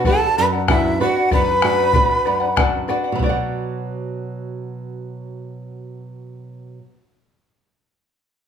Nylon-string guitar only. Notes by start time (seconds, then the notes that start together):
0.06 D4 F#4 B4
0.38 F#2
0.70 D4 F#4 B4
1.00 D4 F#4 B4
1.33 F#2
1.64 D4 F#4 B4
1.95 D4 F#4 B4
2.27 F#2
2.58 D4 F#4 B4
2.89 D4 F#4 B4
3.12 B2 F#3
3.19 B3 F#4
3.26 D5 F#5